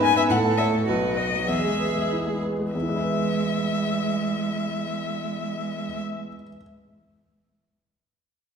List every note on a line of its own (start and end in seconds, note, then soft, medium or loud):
0.00 0.28 G#2 medium
0.00 0.10 B3 soft
0.00 0.30 B4 medium
0.00 0.24 B4 soft
0.00 0.16 G#5 medium
0.16 0.30 B3 soft
0.16 0.22 E5 medium
0.30 0.85 A2 medium
0.30 0.86 A4 medium
0.30 0.38 F#5 medium
0.44 0.67 A3 soft
0.57 0.82 C#5 soft
0.57 0.65 E5 medium
0.73 0.88 A3 soft
0.87 1.47 B1 medium
0.87 1.46 F#4 soft
0.87 1.19 B4 medium
1.03 1.26 F#3 soft
1.17 1.42 B4 soft
1.17 1.49 D#5 medium
1.34 1.48 F#3 soft
1.47 2.70 E2 soft
1.47 2.41 G#4 soft
1.47 2.10 E5 medium
1.65 1.89 G#3 soft
1.80 2.05 B4 soft
1.96 2.21 G#3 soft
2.12 2.37 E4 soft
2.26 2.52 G#3 soft
2.43 2.68 B4 soft
2.60 2.75 G#3 soft
2.73 6.26 E2 soft
2.73 5.98 G#3 soft
2.73 5.98 E5 medium
2.82 6.33 E3 soft
2.89 6.40 G#3 soft
2.96 6.47 E4 soft
3.03 6.55 B4 soft
3.10 6.61 E5 soft